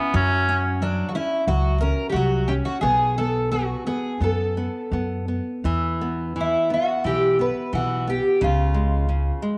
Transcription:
0.00 0.15 B3 medium
0.00 0.14 C#4 medium
0.14 1.01 F#2 loud
0.14 0.81 F#3 medium
0.14 0.62 C#4 loud
0.49 0.81 C#4 medium
0.82 1.14 F#3 medium
0.82 1.07 D4 medium
1.09 1.15 F#4 medium
1.15 1.47 C#4 medium
1.15 1.46 E4 medium
1.47 1.91 C#2 loud
1.47 1.81 F#3 medium
1.47 1.80 F#4 medium
1.81 2.15 C#4 medium
1.81 2.09 A#4 loud
2.09 2.49 F#4 medium
2.09 2.16 G4 medium
2.14 2.58 C2 medium
2.14 2.49 F#3 medium
2.48 2.82 C#4 medium
2.48 2.53 G4 medium
2.65 2.81 F#4 medium
2.81 3.72 B1 loud
2.81 3.17 B3 medium
2.81 3.17 G#4 loud
3.18 3.51 B3 medium
3.18 3.51 A4 medium
3.52 3.85 B3 soft
3.52 3.86 F#4 medium
3.87 4.20 B3 medium
3.87 4.22 G#4 medium
4.20 4.67 F#2 medium
4.20 4.55 B3 medium
4.20 5.25 A4 medium
4.57 4.91 B3 medium
4.91 5.38 F#2 medium
4.91 5.27 B3 soft
5.28 5.63 B3 soft
5.64 6.55 E2 medium
5.64 6.35 E3 medium
6.01 6.34 B3 soft
6.36 6.69 E3 soft
6.41 6.73 E4 medium
6.70 7.03 B3 medium
6.70 7.06 F#4 medium
7.04 7.49 B1 medium
7.04 7.37 E3 medium
7.04 7.37 G4 medium
7.39 7.72 B3 medium
7.39 7.75 B4 medium
7.73 8.17 B1 medium
7.73 8.06 E3 medium
7.73 8.06 F#4 medium
8.07 8.40 B3 soft
8.07 8.43 G4 medium
8.41 9.29 C#2 loud
8.41 9.07 C#3 medium
8.41 9.40 F4 medium
8.74 9.07 G#3 medium
9.09 9.41 C#3 soft
9.42 9.58 G#3 medium

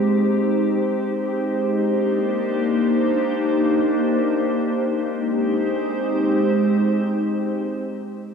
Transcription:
0.00 1.69 G#3 medium
0.00 1.68 C4 medium
0.00 1.68 D#4 medium
0.00 1.69 G4 medium
0.00 1.68 C5 medium
1.72 5.02 A#3 medium
1.72 5.02 D4 medium
1.72 5.02 D#4 medium
1.72 5.02 G4 medium
1.72 5.02 C5 medium
5.05 8.34 G#3 medium
5.05 8.34 C4 medium
5.05 8.34 D#4 medium
5.05 8.34 G4 medium
5.05 8.34 C5 medium

